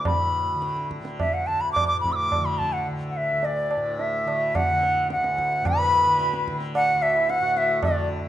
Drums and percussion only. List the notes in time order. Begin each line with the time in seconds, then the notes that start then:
0.05 tabla na, tabla ge
0.62 tabla te
0.77 tabla te
0.91 tabla ke
1.05 tabla te
1.20 tabla na, tabla ge
1.48 tabla te
1.76 tabla na, tabla ge
2.04 tabla ge
2.32 tabla na, tabla ge
2.60 tabla ge
2.87 tabla tin
3.43 tabla tin
3.71 tabla na
3.99 tabla tin
4.28 tabla na
4.55 tabla na, tabla ge
4.83 tabla te
5.10 tabla te
5.24 tabla te
5.38 tabla ke
5.53 tabla te
5.65 tabla na, tabla ge
6.19 tabla te
6.34 tabla te
6.48 tabla ke
6.61 tabla te
6.75 tabla na
7.02 tabla na
7.29 tabla te
7.57 tabla te
7.83 tabla na, tabla ge